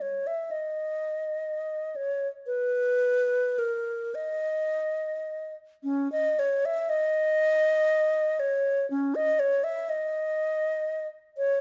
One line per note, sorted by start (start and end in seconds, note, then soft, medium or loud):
0.01 0.28 C#5 medium
0.27 0.52 E5 medium
0.51 1.97 D#5 medium
1.96 2.28 C#5 medium
2.46 3.60 B4 loud
3.58 4.16 A#4 medium
4.15 5.54 D#5 loud
5.84 6.11 C#4 loud
6.12 6.41 D#5 loud
6.39 6.67 C#5 loud
6.65 6.91 E5 loud
6.89 8.41 D#5 loud
8.40 8.89 C#5 loud
8.91 9.16 C#4 loud
9.15 9.41 D#5 loud
9.39 9.65 C#5 loud
9.64 9.91 E5 loud
9.89 11.06 D#5 loud
11.37 11.61 C#5 loud